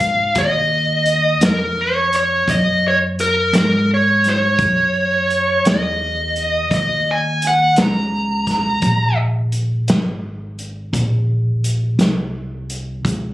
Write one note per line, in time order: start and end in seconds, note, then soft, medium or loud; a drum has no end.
0.00 0.34 G#2 medium
0.00 0.40 F5 medium
0.00 kick medium
0.00 closed hi-hat medium
0.35 1.39 D#2 medium
0.35 1.47 D#5 medium
0.35 kick medium
0.35 closed hi-hat medium
1.05 closed hi-hat soft
1.41 2.45 F2 medium
1.41 snare loud
1.41 closed hi-hat medium
1.45 1.80 A#4 medium
1.81 2.15 C#5 medium
2.12 2.50 C#5 medium
2.12 closed hi-hat medium
2.48 3.51 F#2 medium
2.48 2.86 D#5 medium
2.48 kick medium
2.48 closed hi-hat medium
2.88 2.97 C#5 medium
3.19 3.53 A#4 medium
3.19 closed hi-hat medium
3.53 4.56 G#2 medium
3.53 snare medium
3.53 closed hi-hat medium
3.58 3.89 A#4 medium
3.94 4.28 C#5 medium
4.24 snare soft
4.24 closed hi-hat medium
4.30 5.69 C#5 medium
4.59 5.62 F#2 medium
4.59 kick medium
4.59 closed hi-hat medium
5.30 closed hi-hat soft
5.65 6.69 E2 medium
5.65 snare loud
5.65 closed hi-hat medium
5.69 6.73 D#5 medium
6.36 closed hi-hat medium
6.71 7.74 D#2 medium
6.71 7.09 D#5 medium
6.71 kick medium
6.71 closed hi-hat medium
7.11 7.42 G#5 medium
7.42 closed hi-hat medium
7.47 7.81 F#5 medium
7.76 8.81 C#2 medium
7.76 snare medium
7.76 closed hi-hat medium
7.82 9.17 A#5 medium
8.47 kick medium
8.47 snare soft
8.47 closed hi-hat medium
8.82 9.86 A#1 medium
8.82 kick medium
8.82 closed hi-hat medium
9.52 closed hi-hat soft
9.88 10.92 G#1 medium
9.88 snare loud
9.88 closed hi-hat medium
10.58 closed hi-hat soft
10.93 11.96 A#1 medium
10.93 kick medium
10.93 closed hi-hat medium
11.64 closed hi-hat medium
11.99 13.02 C2 medium
11.99 snare medium
11.99 closed hi-hat medium
12.70 closed hi-hat medium
13.05 13.34 C#2 medium
13.05 kick medium
13.05 closed hi-hat medium